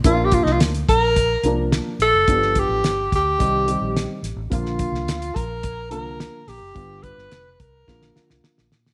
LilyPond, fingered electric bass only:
\new Staff \with { instrumentName = "Fingered electric bass" } { \clef bass \time 4/4 \key bes \major \tempo 4 = 107 bes,,8. c,16 d,8 bes,,4 c,8. r16 bes,,16 ges,,16 | g,,8. a,,16 g,,8 d,8 c,8. bes,,8 r16 a,,16 a,,16 | bes,,8. c,16 d,8 bes,,4 c,8. r16 bes,,16 ges,,16 | g,,8. g,,16 f,,8 c,8 bes,,8 r16 c,16 r16 bes,,16 bes,8 | }